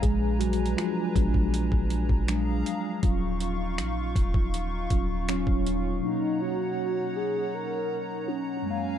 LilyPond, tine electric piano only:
<<
  \new Staff \with { instrumentName = "Tine electric piano" } { \time 4/4 \key ces \lydian \tempo 4 = 80 r4. <aes ces' d'>4. <ges aes d'>4 | <ges des' f'>8 r2 <ges des' f'>8 <ges des' f'>4 | r1 | }
  \new Staff \with { instrumentName = "Tine electric piano" } { \time 4/4 \key ces \lydian <aes aes'>8 <ges ges'>8 <f f'>2.~ | <f f'>2. r4 | <b, fis ais cis' dis'>2.~ <b, fis ais cis' dis'>8 <ges, aes bes des' f''>8 | }
>>